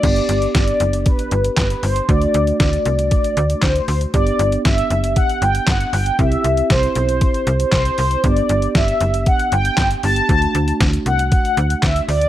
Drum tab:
CC |x---------------|----------------|----------------|----------------|
HH |xxxxxxxxxxxxxxox|xxxxxxxxxxxxxxox|xxxxxxxxxxxxxxox|xxxxxxxxxxxxxxox|
CP |------------x---|------------x---|------------x---|------------x---|
SD |----o-------o---|----o-------o---|----o-------o---|----o-------o---|
BD |o---o---o---o---|o---o---o---o---|o---o---o---o---|o---o---o---o---|

CC |----------------|----------------|
HH |xxxxxxxxxxxxxxox|xxxxxxxxxxxxxxox|
CP |------------x---|------------x---|
SD |----o-------o---|----o-------o---|
BD |o---o---o---o---|o---o---o---o---|